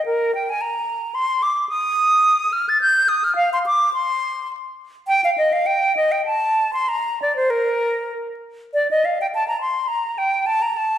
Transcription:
0.06 0.34 A#4 medium
0.35 0.51 G5 medium
0.49 0.63 G#5 medium
0.61 1.16 A#5 medium
1.14 1.44 C6 medium
1.42 1.68 D6 medium
1.69 2.54 D#6 medium
2.52 2.70 F6 medium
2.69 2.81 A6 medium
2.81 3.10 G6 medium
3.08 3.25 D#6 medium
3.24 3.35 F6 medium
3.35 3.50 F5 loud
3.53 3.59 C6 medium
3.66 3.93 D6 medium
3.94 4.49 C6 medium
5.08 5.21 G5 medium
5.24 5.30 F5 medium
5.37 5.54 D#5 medium
5.52 5.68 F5 medium
5.66 5.95 G5 medium
5.97 6.13 D#5 medium
6.12 6.25 G5 medium
6.25 6.71 A5 medium
6.73 6.90 C6 medium
6.88 7.19 A#5 medium
7.22 7.35 D5 medium
7.36 7.52 C5 medium
7.50 8.11 A#4 medium
8.74 8.87 D5 medium
8.91 9.06 D#5 medium
9.05 9.18 F5 medium
9.21 9.27 G5 medium
9.34 9.47 A5 medium
9.48 9.60 A#5 medium
9.61 9.89 C6 medium
9.88 10.19 A#5 medium
10.18 10.48 G5 medium
10.46 10.63 A5 medium
10.62 10.78 A#5 medium
10.77 10.98 A5 medium

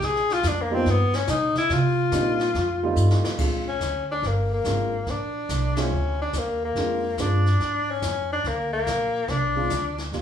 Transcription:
0.01 0.42 A#1 medium
0.01 0.34 G#4 loud
0.01 brush sweep soft
0.01 kick soft
0.01 snare soft
0.16 snare soft
0.30 0.49 F4 loud
0.30 snare soft
0.43 0.85 F2 medium
0.43 kick soft
0.43 snare medium
0.43 hi-hat pedal medium
0.48 0.63 D4 medium
0.62 0.76 A#3 medium
0.71 0.85 G3 medium
0.71 0.84 A#3 medium
0.71 0.85 B3 medium
0.71 0.92 C4 loud
0.71 0.84 D#4 medium
0.71 0.85 F4 medium
0.86 1.27 G2 medium
0.86 brush sweep medium
0.86 kick soft
0.86 snare soft
0.90 1.17 B3 medium
1.14 1.32 C#4 medium
1.14 snare medium
1.27 1.54 B2 medium
1.27 1.57 D#4 medium
1.27 kick soft
1.27 snare medium
1.27 hi-hat pedal medium
1.55 1.74 E4 loud
1.55 muted upright bass stroke soft
1.55 snare soft
1.70 2.11 C3 medium
1.70 2.98 F4 medium
1.70 brush sweep medium
1.70 kick soft
1.70 snare soft
2.12 2.53 A#2 loud
2.12 2.37 G3 medium
2.12 2.37 A#3 medium
2.12 2.38 C4 medium
2.12 2.38 D4 medium
2.12 2.38 D#4 medium
2.12 kick soft
2.12 snare medium
2.12 hi-hat pedal medium
2.40 snare soft
2.54 2.95 F2 medium
2.54 brush sweep soft
2.54 kick soft
2.54 snare soft
2.83 3.36 G3 medium
2.83 3.36 A3 medium
2.83 3.37 C4 medium
2.83 3.37 D#4 medium
2.83 3.37 F4 medium
2.96 3.22 G2 medium
2.96 hi-hat pedal medium
3.10 snare medium
3.25 snare medium
3.38 3.79 A#1 medium
3.38 3.64 G#3 medium
3.38 3.64 C4 medium
3.38 3.64 D4 medium
3.38 3.64 F4 medium
3.38 brush sweep soft
3.38 kick medium
3.38 snare soft
3.38 crash medium
3.68 4.07 C#4 medium
3.80 4.22 D2 medium
3.80 kick soft
3.80 snare medium
3.80 hi-hat pedal soft
4.11 4.28 D4 medium
4.22 4.63 G1 medium
4.22 brush sweep soft
4.22 kick soft
4.22 snare soft
4.27 4.53 A#3 medium
4.53 5.12 A#3 medium
4.64 5.06 G#1 medium
4.64 4.90 G#3 medium
4.64 4.91 C4 soft
4.64 4.91 D4 soft
4.64 4.91 F4 medium
4.64 kick soft
4.64 snare medium
4.64 hi-hat pedal soft
5.06 5.48 A#1 medium
5.06 5.81 D4 medium
5.06 brush sweep soft
5.06 kick soft
5.06 snare soft
5.49 5.90 C2 medium
5.49 kick soft
5.49 snare medium
5.49 hi-hat pedal medium
5.76 5.90 G#3 medium
5.76 5.90 C4 medium
5.76 6.20 C#4 medium
5.76 5.90 D4 medium
5.76 5.91 F4 medium
5.76 snare medium
5.76 ride medium
5.92 6.32 D2 medium
5.92 brush sweep soft
6.21 6.40 D4 medium
6.33 6.74 D#2 medium
6.33 kick soft
6.33 snare medium
6.33 hi-hat pedal medium
6.38 6.64 A#3 medium
6.65 7.22 A#3 medium
6.75 7.17 F2 medium
6.75 7.01 G#3 medium
6.75 7.02 C4 medium
6.75 7.02 D4 medium
6.75 7.02 F4 medium
6.75 brush sweep soft
6.75 kick soft
6.75 snare soft
7.18 7.59 G2 medium
7.18 7.43 G#3 medium
7.18 7.44 C4 soft
7.18 7.44 D4 medium
7.18 7.92 D4 medium
7.18 7.44 F4 medium
7.18 kick soft
7.18 snare medium
7.18 hi-hat pedal medium
7.46 snare soft
7.60 8.01 G#2 medium
7.60 brush sweep medium
7.60 kick soft
7.60 snare soft
7.91 8.31 C#4 medium
8.02 8.43 F2 medium
8.02 kick soft
8.02 snare medium
8.02 hi-hat pedal medium
8.33 8.49 D4 medium
8.44 8.85 D2 medium
8.44 8.72 A#3 medium
8.44 brush sweep soft
8.44 kick soft
8.44 snare soft
8.73 9.31 A#3 medium
8.86 9.27 A#1 medium
8.86 kick soft
8.86 snare medium
8.86 hi-hat pedal medium
9.28 9.69 C2 medium
9.28 9.99 D4 medium
9.28 brush sweep soft
9.28 kick soft
9.28 snare soft
9.55 9.69 G#3 medium
9.55 9.69 C4 medium
9.55 9.69 D4 medium
9.55 9.70 F4 medium
9.70 10.11 D2 medium
9.70 kick soft
9.70 snare medium
9.70 hi-hat pedal medium
9.98 snare soft
10.12 10.22 D#2 medium
10.12 10.22 G3 medium
10.12 10.22 A#3 soft
10.12 10.22 C#4 soft
10.12 10.22 F4 medium
10.12 brush sweep soft
10.12 kick soft
10.12 snare soft

